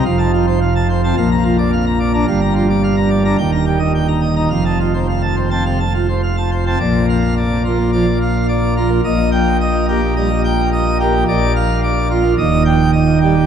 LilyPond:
<<
  \new Staff \with { instrumentName = "Pipe organ" } { \time 4/4 \key bes \major \tempo 4 = 108 f''16 a''16 f'16 c''16 f''16 a''16 c''16 a''16 f''16 bes''16 f'16 d''16 f''16 bes''16 d''16 bes''16 | f''16 bes''16 f'16 d''16 f''16 bes''16 d''16 bes''16 g''16 bes''16 g'16 ees''16 g''16 bes''16 ees''16 bes''16 | f''16 a''16 f'16 c''16 f''16 a''16 c''16 a''16 f''16 a''16 f'16 c''16 f''16 a''16 c''16 a''16 | d''8 f''8 d''8 f'8 d''8 f''8 d''8 f'8 |
ees''8 g''8 ees''8 g'8 ees''8 g''8 ees''8 g'8 | d''8 f''8 d''8 f'8 ees''8 g''8 ees''8 g'8 | }
  \new Staff \with { instrumentName = "Pipe organ" } { \clef bass \time 4/4 \key bes \major << { f,4.~ f,16 c'16 bes,4.~ bes,16 d'16 | g,4.~ g,16 d'16 ees,4.~ ees,16 ees'16 | f,4.~ f,16 c'16 c16 r4. c'16 | bes,4. bes16 r16 f16 r4 r16 bes16 r16 |
bes,4. bes16 r16 g16 r4 r16 bes16 r16 | bes,4. bes16 r16 ees,4. g16 r16 | } \\ { f,,2 bes,,2 | g,,2 ees,,2 | f,,1 | bes,,1 |
bes,,1 | bes,,2 ees,,2 | } >> }
>>